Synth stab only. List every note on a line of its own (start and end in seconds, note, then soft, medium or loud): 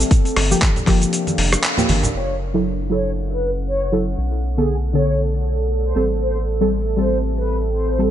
0.50 0.59 F3 medium
0.50 0.60 A#3 medium
0.50 0.60 G4 loud
0.86 1.74 F3 medium
0.86 1.75 A#3 medium
0.86 1.76 G4 loud
1.77 1.93 F3 medium
1.77 1.93 A#3 medium
1.77 1.93 G4 medium
2.54 2.63 F#3 medium
2.54 2.63 E4 medium
2.54 2.63 A4 medium
2.90 3.89 F#3 medium
2.90 3.90 E4 medium
2.90 3.90 A4 medium
3.92 4.03 F#3 medium
3.92 4.04 E4 medium
3.92 4.04 A4 medium
4.57 4.66 D3 medium
4.57 4.66 B3 medium
4.57 4.67 A4 loud
4.93 5.93 D3 medium
4.93 5.93 B3 medium
4.93 5.94 A4 medium
5.95 6.07 G3 medium
5.95 6.07 C4 medium
5.95 6.07 A4 medium
6.60 6.69 G3 medium
6.60 6.70 C4 medium
6.60 6.70 A4 medium
6.96 7.96 G3 medium
6.96 7.96 C4 medium
6.96 7.97 A4 medium
7.99 8.10 G3 medium
7.99 8.10 C4 medium
7.99 8.11 A4 medium